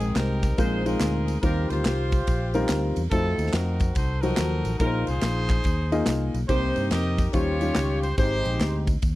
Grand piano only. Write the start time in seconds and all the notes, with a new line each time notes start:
Already playing: G#2 G#3 C4 D#4 A#4 G5
0.58 A#2 G#3 C4 D#4 F4 A#4
0.86 G#3 C4 D#4 F4 C5
1.43 D#3 G3 C4 D#4 F4 A#4
2.54 G3 C4 D#4 F4 A#4
3.11 A3 D#4 F4 F#4 C5
4.23 F3 F#3 D#4 F#4 C5
4.80 A#2 A#3 D#4 F4 G#4 A#4
4.86 C5
5.92 A#3 D#4 F4 G#4 D#5
6.49 C3 A#3 C4 D#4 G4 C5
7.33 D#3 G3 C#4 D#4 F4 C5
7.61 G3 C#4 D#4 F4 G4
8.18 G#2 G#3 C4 D#4 G4 C5